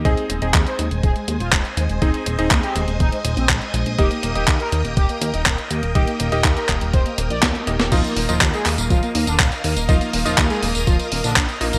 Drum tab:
CC |----------------|----------------|----------------|----------------|
HH |xxxxxxxxxxxxxxxx|xxxxxxxxxxxxxxxx|xxxxxxxxxxxxxxxx|xxxxxxxxxxxxxxxx|
TB |----------------|----------------|----------------|----------------|
CP |----x-------x---|----x-------x---|----x-------x---|----x-x-----x---|
SD |----------------|----------------|----------------|------------o--o|
BD |o---o---o---o---|o---o---o---o---|o---o---o---o---|o---o-o-o---o---|

CC |x---------------|----------------|
HH |xxoxxxoxxxoxxxox|xxoxxxoxxxoxxxox|
TB |xx-xxx-xxx-xxx-x|xx-xxx-xxx-xxx-x|
CP |----x-x-----x---|----x-------x---|
SD |----------------|----------------|
BD |o---o---o---o---|o---o---o---o---|